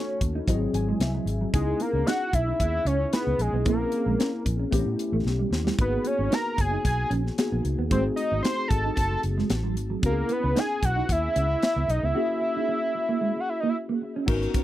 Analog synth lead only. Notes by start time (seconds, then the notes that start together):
Already playing: C#5
1.54 G#4
1.81 A#4
2.06 F#5
2.34 E5
2.60 E5
2.86 C#5
3.13 B4
3.41 G#4
3.68 A#4
5.81 B4
6.07 C#5
6.33 A#5
6.60 G#5
6.87 G#5
7.92 C5
8.16 D#5
8.43 C6
8.68 A5
8.95 A5
10.06 A#4
10.32 B4
10.59 G#5
10.85 F#5
11.12 E5
11.90 D#5
12.05 E5
13.40 F#5
13.49 E5
13.60 D#5
13.69 E5